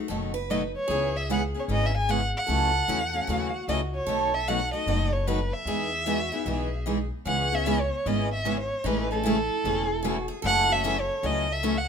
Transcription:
0.08 F#1 B2 D#3 F#3 A3 B3 D#4 F#4 A4
0.34 B4
0.50 B2 D#3 F#3 A3 B3 D#4 F#4 A4 D#5
0.76 C#5
0.88 C#2 C#3 E3 G#3 B3 C#4 E4 G#4
1.17 E5
1.29 C#3 E3 G#3 B3 C#4 E4 G#4 F#5
1.54 B3 C#4 G#4
1.59 C#5
1.68 G#1 C#3 E3 G#3 B3 C#4 E4 G#4 D#5
1.86 E5
1.97 G#5
2.09 C#3 E3 G#3 B3 C#4 E4 G#4 F#5
2.37 F#5
2.47 C#2 C#3 E3 F#3 A3 C#4 E4 F#4 A4
2.88 E2 C#3 E3 F#3 A3 C#4 E4 F#4 A4
3.14 A3 C#4 F#4
3.27 D#2 C#3 E3 F#3 A3 C#4 E4 F#4 A4
3.68 C#2 C#3 E3 F#3 A3 C#4 E4 F#4 A4 D#5
3.95 C#5
4.07 B1 B2 D#3 F#3 A3 B3 D#4 F#4 A4
4.35 E5
4.48 B2 D#3 F#3 A3 B3 D#4 F#4 A4 F#5
4.73 A3 D#4 F#4 D#5
4.86 F#1 B2 D#3 F#3 A3 B3 D#4 F#4 A4
5.13 C#5
5.27 B2 D#3 F#3 A3 B3 D#4 F#4 A4 B4
5.54 E5
5.65 E2 E3 G#3 B3 D#4 G#4
6.06 E3 G#3 B3 D#4 F#4 G#4
6.32 B3 D#4 E4 G#4
6.46 B1 E3 G#3 B3 D#4 G#4
6.86 E3 G#3 B3 D#4 G#4
7.25 C#2 C#3 E3 G#3 B3 C#4 E4 G#4 F#5
7.52 B3 C#4 G#4 E5
7.66 C#3 E3 G#3 B3 C#4 E4 G#4
7.81 C#5
8.06 G#1 C#3 E3 G#3 B3 C#4 E4 G#4 D#5
8.34 E5
8.45 C#3 E3 G#3 B3 C#4 E4 G#4
8.60 C#5
8.84 A1 C#3 E3 G#3 A3 C#4 D#4 E4 G#4 A4 B4
9.11 A3 C#4 G#4 A4
9.23 C#3 E3 G#3 A3 C#4 E4 G#4 A4
9.64 E1 C#3 E3 G#3 A3 C#4 E4 G#4 A4
10.03 C#3 E3 G#3 A3 C#4 E4 F#4 G#4 A4
10.28 G#4
10.42 F#1 C#3 E3 F#3 A3 C#4 E4 F#4 A4 F#5
10.69 A3 C#4 F#4 E5
10.84 C#3 E3 F#3 A3 C#4 E4 F#4 A4
11.00 C#5
11.23 C#2 C#3 E3 F#3 A3 C#4 E4 F#4 A4 D#5
11.52 E5
11.63 C#3 E3 F#3 A3 C#4 E4 F#4 A4
11.77 F#5

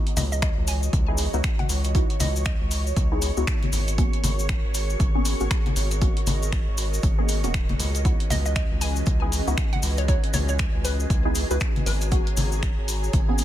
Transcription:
Already playing: E3 B3 D#4 E4 F#4 C#5 D#5 C#6
0.07 closed hi-hat
0.17 C#2 D#5, open hi-hat, high conga, low conga, cabasa
0.32 D#5, cabasa
0.42 D#5, finger snap, kick, closed hi-hat, cabasa
0.57 C#2
0.67 G#5, open hi-hat, cabasa
0.83 cabasa
0.93 C#2, kick, closed hi-hat, high conga, cabasa
1.08 B3 D#4 E4 G#4
1.18 open hi-hat, cabasa
1.34 C#2 B3 D#4 E4 F#4, cabasa
1.44 finger snap, kick, closed hi-hat, cabasa
1.59 F#5, closed hi-hat, high conga
1.69 C#2, open hi-hat, cabasa
1.84 closed hi-hat, cabasa
1.95 B3 D#4 E4 F#4, kick, closed hi-hat, cabasa
2.10 closed hi-hat
2.19 C#2 D#5, open hi-hat, high conga, low conga, cabasa
2.36 cabasa
2.46 D#5, finger snap, kick, closed hi-hat
2.61 C#2
2.71 open hi-hat, cabasa
2.87 cabasa
2.96 C#2, kick, closed hi-hat, high conga, cabasa
3.12 B3 D#4 E4 G#4
3.22 open hi-hat, cabasa
3.37 C#2 B3 D#4 E4 F#4, cabasa
3.47 finger snap, kick, closed hi-hat, cabasa
3.63 closed hi-hat, high conga
3.73 G#1 F#4 G#4 A#4 C#5, open hi-hat, low conga, cabasa
3.88 closed hi-hat, cabasa
3.98 A#3 B3 C#4 F#4, kick, closed hi-hat, cabasa
4.13 closed hi-hat
4.24 G#1, open hi-hat, high conga, low conga, cabasa
4.39 cabasa
4.49 finger snap, kick, closed hi-hat, cabasa
4.64 G#1
4.74 open hi-hat, cabasa
4.90 cabasa
4.99 G#1, kick, closed hi-hat, high conga, cabasa
5.15 A#3 B3 C#4 G#4
5.25 open hi-hat, cabasa
5.40 G#1 A#3 B3 C#4 F#4, cabasa
5.51 finger snap, kick, closed hi-hat, cabasa
5.66 closed hi-hat, high conga
5.76 G#1 D#5, open hi-hat, cabasa
5.91 closed hi-hat, cabasa
6.01 A#3 B3 C#4 F#4, kick, closed hi-hat, cabasa
6.17 closed hi-hat
6.27 G#1, open hi-hat, high conga, low conga, cabasa
6.42 cabasa
6.52 finger snap, kick, open hi-hat, cabasa
6.68 G#1
6.78 open hi-hat, cabasa
6.94 cabasa
7.03 G#1, kick, closed hi-hat, high conga, cabasa
7.18 A#3 B3 C#4 G#4
7.29 open hi-hat, cabasa
7.44 D#1 A#3 B3 C#4 F#4, closed hi-hat, cabasa
7.54 finger snap, kick, closed hi-hat, cabasa
7.69 closed hi-hat, high conga, low conga
7.79 C#2, open hi-hat, low conga, cabasa
7.95 closed hi-hat, cabasa
8.05 E3 B3 C#4 D#4 E4 F#4 G#4 B4 G#5, kick, closed hi-hat, cabasa
8.20 closed hi-hat
8.30 C#2 D#5, open hi-hat, high conga, low conga, cabasa
8.46 D#5, cabasa
8.56 D#5, finger snap, kick, closed hi-hat, cabasa
8.71 C#2
8.81 G#5, open hi-hat, cabasa
8.96 cabasa
9.06 C#2, kick, closed hi-hat, high conga, cabasa
9.22 B3 D#4 E4 G#4
9.32 open hi-hat, cabasa
9.47 C#2 B3 D#4 E4 F#4, cabasa
9.57 finger snap, kick, closed hi-hat, cabasa
9.73 F#5, closed hi-hat, high conga
9.83 C#2, open hi-hat, cabasa
9.97 C#5, closed hi-hat, cabasa
10.08 B3 D#4 E4 F#4 C#5, kick, closed hi-hat, cabasa
10.24 closed hi-hat
10.33 C#2 C#5, open hi-hat, high conga, low conga, cabasa
10.48 C#5, cabasa
10.59 finger snap, kick, closed hi-hat, cabasa
10.74 C#2
10.85 B4, open hi-hat, cabasa
11.00 cabasa
11.10 C#2, kick, closed hi-hat, high conga, cabasa
11.25 B3 D#4 E4 G#4
11.35 open hi-hat, cabasa
11.51 C#2 B3 D#4 E4 F#4 B4, cabasa
11.60 finger snap, kick, closed hi-hat, cabasa
11.76 closed hi-hat, high conga
11.86 G#1 G#4 B4 C#5 A#5, open hi-hat, low conga, cabasa
12.01 closed hi-hat, cabasa
12.11 G#3 B3 C#4 F#4, kick, closed hi-hat, cabasa
12.27 closed hi-hat
12.37 G#1, open hi-hat, high conga, low conga, cabasa
12.52 cabasa
12.63 finger snap, kick, closed hi-hat, cabasa
12.78 G#1
12.88 open hi-hat, cabasa
13.04 cabasa
13.13 G#1, kick, closed hi-hat, high conga, cabasa
13.29 A#3 B3 C#4 G#4
13.38 open hi-hat, cabasa

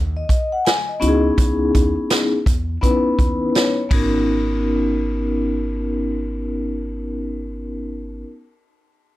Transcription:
Already playing: D#2
0.17 D#5
0.29 kick, closed hi-hat
0.52 F#5
0.65 G#5, snare, closed hi-hat
0.89 D#5
1.00 C#2 B3 C#4 D#4 E4 F#4, closed hi-hat
1.08 G#4
1.38 C#2, kick, closed hi-hat
1.75 D#2, kick, closed hi-hat
2.10 snare, closed hi-hat
2.46 E2, kick, closed hi-hat
2.81 B3 C#4 D#4 E4 B4, kick, closed hi-hat
3.19 D#2, kick, closed hi-hat
3.55 C#5, snare, closed hi-hat
3.89 G#1 B3 C#4 D#4 F#4, kick, ride
3.94 A#4

